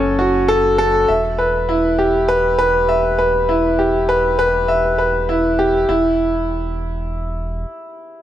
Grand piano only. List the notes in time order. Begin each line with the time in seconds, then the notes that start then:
Already playing: C#4 F#4 A4 C#5
0.19 F#4
0.48 A4
0.78 A4
1.09 E5
1.39 B4
1.69 E4
1.99 G4
2.28 B4
2.59 B4
2.89 E5
3.19 B4
3.49 E4
3.79 G4
4.09 B4
4.39 B4
4.68 E5
4.98 B4
5.29 E4
5.59 G4
5.89 E4